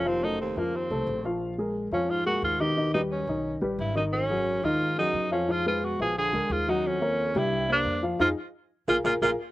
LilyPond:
<<
  \new Staff \with { instrumentName = "Upright piano" } { \time 4/4 \key ees \minor \tempo 4 = 177 <f f' f''>8 <a a' c''>4 <f f' f''>4 <a a' c''>4 <f f' f''>8~ | <f f' f''>8 <aes aes' bes'>4 <f f' f''>4 <aes aes' bes'>4 <ees ees' ees''>8 | <ees ees' ees''>8 <g g' b'>4 <ees ees' ees''>4 <g g' b'>4 <ees ees' ees''>8~ | <ees ees' ees''>8 <ges ges' aes'>4 <ees ees' ees''>4 <ges ges' aes'>4 <f f' f''>8 |
<f f' f''>8 <aes aes' ces''>4 <f f' f''>4 <aes aes' bes'>4 <ges ges' ges''>8~ | <ges ges' ges''>8 <bes bes' des''>4 <g g' g''>4 <bes bes' c''>4 <f f' f''>8 | <ees' f' aes'>8 r4. <f' aes' bes'>8 <f' aes' bes'>8 <f' aes' bes'>8 r8 | }
  \new Staff \with { instrumentName = "Tenor saxophone" } { \time 4/4 \key ees \minor c'8 ees'8 c'8 bes8 c'4. r8 | r4. des'8 f'8 ges'8 f'8 g'8~ | g'8 ees'8 des'4. r8 fes'8 ees'8 | des'4. f'4 ees'4 des'8 |
f'8 f'8 ges'8 aes'8 aes'4 f'8 ees'8 | des'4. fes'4 d'4 r8 | f'8 r4. f'8 f'8 f'8 r8 | }
  \new Staff \with { instrumentName = "Baritone saxophone" } { \clef bass \time 4/4 \key ees \minor ees,8 ges,8 ees,8 des,8 ees,4. r8 | r4. f,8 aes,8 bes,8 aes,8 ces8~ | ces8 fis,8 fis,4. r8 g,8 fis,8 | ges,4. aes,4 ges,4 f,8 |
aes,8 aes,8 ces8 ces8 d4 aes,8 ges,8 | f,4. g,4 g,4 r8 | aes,8 r4. bes,8 bes,8 bes,8 r8 | }
  \new Staff \with { instrumentName = "Upright bass" } { \clef bass \time 4/4 \key ees \minor f,,4. f,4 c,8 bes,,4~ | bes,,4. f,4. ees,4~ | ees,4. b,,4 a,,8 aes,,4~ | aes,,4. ees,4. f,4~ |
f,4. bes,,4 d,8 ees,4~ | ees,4. c,4. f,4 | f,8 r4. bes,,8 bes,,8 bes,,8 r8 | }
>>